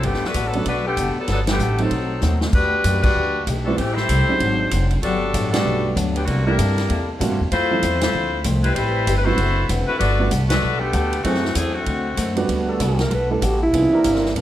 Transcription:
0.03 G1 D3 G3 A3 B3 F#4 G4, kick, ride
0.07 A4
0.14 snare
0.22 muted upright bass stroke, snare
0.27 A3 D4 F#4 B4
0.34 A1 G3 B3 F#4 A4, kick, hi-hat pedal, ride
0.47 F#3 B3 D4 A4
0.53 F#3 A3 B3 D4, ride
0.66 B1 G3 A3 B3 D4 F#4 A4 B4, kick, ride
0.87 D3 A3 B3 G4
0.96 F#1 G3 B3 F#4 A4, kick, hi-hat pedal, ride
1.16 F#3 B3 D4 A4, muted upright bass stroke
1.27 G1 G3 B3 F#4 A4, kick, snare, ride
1.32 F#3 B3 D4 A4
1.47 D3 G4, snare, ride
1.51 A3 B3
1.59 A1 G3 B3 F#4 A4, hi-hat pedal
1.78 F#3 A3 C4 D#4 A4, ride
1.82 C4
1.90 B1 B2 A3 C4 D#4, kick, ride
2.21 D#2 B2 A3 C4 D#4, snare, hi-hat pedal
2.41 snare
2.53 E2 E3 G3 A3 D4 F#4 G4 B4, kick, crash
2.84 F#2 E3 A3 D4 G4, kick, hi-hat pedal, ride
3.03 G3 D4 F#4 B4, kick, crash
3.15 D2 E3 A3 D4 G4
3.47 B1 E3 A3 D4 G4, kick, hi-hat pedal, ride
3.64 G3 A3 B3 C4 D4 E4 F#4 A4
3.76 A1 A2 E3 G3 A3 C4 G4, kick, ride
3.81 C4 E4
3.94 A3 E4 G4 C5, snare
4.09 C2 A2 G3 C4 E4, kick, hi-hat pedal, ride
4.28 F#3 G#3 C4 D4 D#4, muted upright bass stroke
4.40 G#1 G#2 F#3 C4 D4, kick, ride
4.71 F1 G#2 F#3 C4 D4, kick, hi-hat pedal, ride
4.91 ride
5.02 G1 G2 F#3 G3 B3 D4 F#4 A4, kick, ride
5.33 A1 G2 F#3 B3 D4, kick, hi-hat pedal, ride
5.52 G3 A3 B3 D4 F#4 A4, snare, ride
5.64 B1 G2 F#3 B3 D4
5.95 D2 G2 F#3 B3 D4, kick, hi-hat pedal, ride
6.15 D3 F#3 B3 G4, ride
6.26 C2 C3 D3 G3 A#3 E4 F#4 A4, kick, ride
6.46 G3 A3 A#3 D4 E4 A#4
6.56 G2 C3 A#3 E4 A4, kick, hi-hat pedal, ride
6.78 snare, ride
6.89 E2 C3 A#3 E4 A4, kick, ride
7.19 A2 C3 G3 A3 A#3 D4 E4 F#4 A4, kick, hi-hat pedal, ride
7.31 G2
7.40 E2
7.51 F2 F3 A3 C4 E4 F4 C5, kick, ride
7.71 F3 G3 A3 C4 E4
7.83 E2 F3 A3 C4 E4, kick, hi-hat pedal, ride
8.01 A3 E4 F4 C5, snare, ride
8.13 D2 F3 A3 C4 E4
8.44 C2 F3 A3 C4 E4, kick, hi-hat pedal, ride
8.63 G3 C4 E4 B4, ride
8.74 A1 G3 A3 C4 E4 G4 B4 C5, kick, ride
9.07 G1 A3 C4 G4 B4, kick, hi-hat pedal, ride
9.18 B4
9.24 F#3 A3 B3 C4 E4 F#4 C5
9.38 F#1 D3 C4 F#4 B4, kick, ride
9.68 E1 D3 C4 F#4 B4, kick, hi-hat pedal, ride
9.86 A3 E4 F#4 B4
9.97 G1 G3 A3 B3 D4 F#4 B4, kick, ride
10.02 A4
10.19 G3 A3 B3 D4 F#4
10.30 C2 G3 B3 F#4 A4, kick, hi-hat pedal, ride
10.48 A3 D4 F#4 B4, snare, ride
10.62 B1 G3 B3 F#4 A4
10.79 D3 A3 B3 G4
10.92 D2 G3 B3 F#4 A4, kick, hi-hat pedal, ride
11.13 ride
11.23 F#2 E3 F#3 A3 C4 E4 F#4 G#4 A4, kick, ride
11.34 snare
11.45 snare
11.55 E2 E3 F#3 A3 C4 E4 G#4 A4, kick, hi-hat pedal, ride
11.75 D3 A3 C4 F#4
11.85 D2 D3 A3 C4 F#4, kick, ride
12.16 F#2 D3 A3 C4 F#4, kick, hi-hat pedal, ride
12.36 G3 A3 B3 D4 F#4, ride
12.47 D2 G3 B3 F#4 A4, kick, ride
12.68 G3 B3 F#4 A4
12.79 C2 G3 A3 B3 D4 F#4 A4, kick, hi-hat pedal, ride
12.99 A#4, snare, ride
13.10 B1 G3 B3 F#4 A4 B4, kick, ride
13.30 G3 A3 B3 D4 E4 A4
13.41 A1 G3 B3 F#4 G4 A4, kick, hi-hat pedal, ride
13.63 E4
13.71 C2 C3 E3 F3 A#3 B3 C#4 D4 D#4 G#4, kick, ride
13.92 E3 A#3 C4 D4 G4 A#4, muted upright bass stroke
14.04 G1 C3 E3 A#3 D4, kick, hi-hat pedal, ride
14.15 snare
14.25 snare
14.34 A#1 C3 E3 A#3 D4, kick, ride

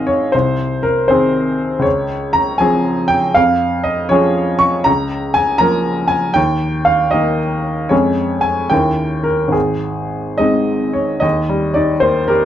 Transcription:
Already playing: G#1 D#3 C4 G#4 D#5 F5
0.07 C#5
0.32 C2 C5
0.83 A#4
1.08 D#3 C4 G#4 C5
1.79 C#2 C#5
2.33 A#5
2.58 F3 C4 G#4 G#5
3.08 G5
3.34 F2 F5
3.84 D#5
4.09 F3 C#4 G#4 C#5
4.59 C#6
4.84 C#2 A#5
5.34 G#5
5.58 F3 A#3 A#4 A#5
6.08 G#5
6.34 D#2 G5
6.85 F5
7.11 D#3 A#3 A#4 D#5
7.89 F2 G#3 C#4 G#4 C#5
8.41 G#5
8.70 D#2 A#3 C#4 E4 G5
9.24 A#4
9.48 G#1
9.52 G#4
10.38 G#3 C4 D#4 D#5
10.93 C#5
11.20 D#2 D#5
11.49 G3
11.74 D#4 D5
12.00 A#3 C5
12.28 G4 A#4

